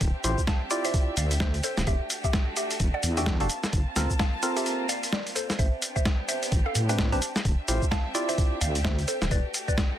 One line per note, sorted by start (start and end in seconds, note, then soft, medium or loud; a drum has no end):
0.00 0.12 D1 loud
0.00 1.83 C4 medium
0.00 1.85 D4 medium
0.00 3.46 G4 medium
0.00 1.85 E5 medium
0.00 kick loud
0.00 closed hi-hat medium
0.00 cabasa soft
0.24 0.35 A1 medium
0.24 0.41 E4 medium
0.24 0.41 F4 medium
0.24 0.41 G4 medium
0.24 0.41 C5 medium
0.24 closed hi-hat loud
0.24 cabasa medium
0.38 kick medium
0.38 cabasa soft
0.47 0.72 F5 medium
0.47 0.72 A5 loud
0.47 kick loud
0.47 snare loud
0.47 cabasa soft
0.71 1.15 E4 loud
0.71 1.15 F4 medium
0.71 1.15 G4 medium
0.71 1.15 D5 loud
0.71 closed hi-hat medium
0.71 cabasa medium
0.85 1.08 C5 medium
0.85 1.09 E5 medium
0.85 closed hi-hat medium
0.85 cabasa soft
0.94 kick loud
0.94 closed hi-hat medium
0.94 cabasa soft
1.17 1.61 D2 loud
1.17 1.35 D5 medium
1.17 1.35 F5 medium
1.17 closed hi-hat loud
1.17 cabasa medium
1.31 closed hi-hat medium
1.31 cabasa soft
1.40 1.58 C5 medium
1.40 1.58 E5 medium
1.40 kick loud
1.40 snare loud
1.40 cabasa soft
1.54 closed hi-hat medium
1.63 1.81 A4 medium
1.63 1.81 C5 medium
1.63 closed hi-hat loud
1.63 cabasa medium
1.77 1.85 D1 medium
1.77 snare medium
1.77 cabasa soft
1.87 1.98 E1 medium
1.87 3.48 A3 medium
1.87 3.48 D4 medium
1.87 3.48 F#4 medium
1.87 2.11 G4 medium
1.87 2.11 E5 loud
1.87 kick loud
1.87 closed hi-hat medium
1.87 cabasa soft
2.10 closed hi-hat loud
2.10 cabasa medium
2.24 2.48 G4 medium
2.24 2.48 E5 medium
2.24 kick medium
2.24 cabasa soft
2.33 kick loud
2.33 snare loud
2.33 cabasa soft
2.56 2.81 G4 medium
2.56 2.81 E5 medium
2.56 closed hi-hat loud
2.56 cabasa medium
2.71 closed hi-hat medium
2.71 cabasa soft
2.80 2.91 E1 medium
2.80 kick loud
2.80 closed hi-hat medium
2.80 cabasa soft
2.94 3.08 D5 medium
2.94 3.09 F#5 medium
3.03 3.42 E2 medium
3.03 closed hi-hat loud
3.03 cabasa medium
3.17 3.37 D4 medium
3.17 3.37 F#4 medium
3.17 3.37 G4 medium
3.17 3.37 A4 loud
3.17 3.32 E5 medium
3.17 3.32 G5 medium
3.17 closed hi-hat medium
3.17 cabasa soft
3.26 kick loud
3.26 snare loud
3.26 cabasa soft
3.40 3.48 E1 medium
3.40 3.48 D4 loud
3.40 3.48 F#4 medium
3.40 3.48 G4 medium
3.40 3.48 A4 loud
3.40 3.64 F5 medium
3.40 3.64 A5 medium
3.40 closed hi-hat medium
3.50 5.57 A#3 medium
3.50 5.57 C4 medium
3.50 5.57 F4 medium
3.50 5.57 A5 medium
3.50 closed hi-hat loud
3.50 cabasa medium
3.64 snare medium
3.64 cabasa soft
3.73 3.84 G1 loud
3.73 kick loud
3.73 closed hi-hat medium
3.73 cabasa soft
3.96 4.07 D2 medium
3.96 4.13 C4 medium
3.96 4.13 F4 medium
3.96 4.13 A4 medium
3.96 4.13 A#4 medium
3.96 snare medium
3.96 closed hi-hat loud
3.96 cabasa medium
4.10 kick medium
4.10 cabasa soft
4.19 4.44 F5 medium
4.19 4.44 A5 medium
4.19 kick loud
4.19 snare loud
4.19 cabasa soft
4.43 4.87 C4 loud
4.43 4.87 F4 medium
4.43 4.87 A4 medium
4.43 4.87 A#4 loud
4.43 closed hi-hat loud
4.43 cabasa medium
4.56 4.80 G4 medium
4.56 4.80 E5 loud
4.56 closed hi-hat medium
4.56 cabasa soft
4.66 closed hi-hat medium
4.66 cabasa soft
4.89 5.06 D5 medium
4.89 5.07 F5 medium
4.89 closed hi-hat loud
4.89 cabasa medium
5.03 closed hi-hat medium
5.03 cabasa soft
5.12 5.30 A#4 medium
5.12 5.30 D5 medium
5.12 snare loud
5.12 cabasa soft
5.27 closed hi-hat medium
5.35 5.53 A4 medium
5.35 5.53 C5 medium
5.35 closed hi-hat loud
5.35 cabasa medium
5.50 snare medium
5.50 closed hi-hat soft
5.50 cabasa soft
5.59 5.70 A1 loud
5.59 7.43 B3 medium
5.59 7.43 C4 medium
5.59 7.43 D4 medium
5.59 7.43 G4 medium
5.59 5.83 C5 medium
5.59 5.83 E5 loud
5.59 kick loud
5.59 closed hi-hat medium
5.59 cabasa soft
5.82 closed hi-hat loud
5.82 cabasa medium
5.96 6.20 C5 medium
5.96 6.20 E5 medium
5.96 kick medium
5.96 cabasa soft
6.05 kick loud
6.05 snare loud
6.05 cabasa soft
6.28 6.53 C5 medium
6.28 6.53 E5 medium
6.28 closed hi-hat loud
6.28 cabasa medium
6.43 closed hi-hat medium
6.43 cabasa soft
6.52 6.63 A1 medium
6.52 kick loud
6.52 closed hi-hat medium
6.52 cabasa soft
6.66 6.80 A4 medium
6.66 6.80 F5 medium
6.75 7.14 A2 medium
6.75 closed hi-hat loud
6.75 cabasa medium
6.89 7.09 C4 medium
6.89 7.09 D4 medium
6.89 7.09 G4 medium
6.89 7.09 B4 loud
6.89 7.04 E5 medium
6.89 7.04 G5 medium
6.89 closed hi-hat medium
6.89 cabasa soft
6.98 kick loud
6.98 snare loud
6.98 cabasa soft
7.12 7.20 A1 medium
7.12 7.20 C4 medium
7.12 7.20 D4 medium
7.12 7.20 G4 medium
7.12 7.20 B4 loud
7.12 7.36 C5 medium
7.12 7.36 A5 medium
7.12 closed hi-hat medium
7.22 closed hi-hat loud
7.22 cabasa medium
7.36 snare medium
7.36 cabasa soft
7.45 7.56 D1 loud
7.45 9.29 C4 medium
7.45 9.29 D4 medium
7.45 9.98 G4 medium
7.45 9.29 E5 medium
7.45 kick loud
7.45 closed hi-hat medium
7.45 cabasa soft
7.68 7.80 A1 medium
7.68 7.85 E4 medium
7.68 7.85 F4 medium
7.68 7.85 G4 medium
7.68 7.85 C5 medium
7.68 closed hi-hat loud
7.68 cabasa medium
7.82 kick medium
7.82 cabasa soft
7.91 8.15 F5 medium
7.91 8.15 A5 medium
7.91 kick loud
7.91 snare loud
7.91 cabasa soft
8.15 8.59 E4 loud
8.15 8.59 F4 medium
8.15 8.59 G4 medium
8.15 8.59 D5 loud
8.15 closed hi-hat loud
8.15 cabasa medium
8.29 8.53 C5 medium
8.29 8.52 E5 loud
8.29 closed hi-hat medium
8.29 cabasa soft
8.38 kick loud
8.38 closed hi-hat medium
8.38 cabasa soft
8.61 9.05 D2 loud
8.61 8.79 D5 medium
8.61 8.79 F5 medium
8.61 closed hi-hat loud
8.61 cabasa medium
8.75 closed hi-hat medium
8.75 cabasa soft
8.84 9.02 C5 medium
8.84 9.02 E5 medium
8.84 kick loud
8.84 snare loud
8.84 cabasa soft
8.99 closed hi-hat soft
9.08 9.25 A4 medium
9.08 9.25 C5 medium
9.08 closed hi-hat loud
9.08 cabasa medium
9.22 9.29 D1 medium
9.22 snare medium
9.22 cabasa soft
9.31 9.42 E1 loud
9.31 9.98 A3 medium
9.31 9.98 D4 medium
9.31 9.98 F#4 medium
9.31 9.55 B4 medium
9.31 9.55 D5 loud
9.31 kick loud
9.31 closed hi-hat medium
9.31 cabasa soft
9.54 closed hi-hat loud
9.54 cabasa medium
9.68 9.92 B4 medium
9.68 9.92 D5 medium
9.68 kick medium
9.68 cabasa soft
9.78 kick loud
9.78 snare loud
9.78 cabasa soft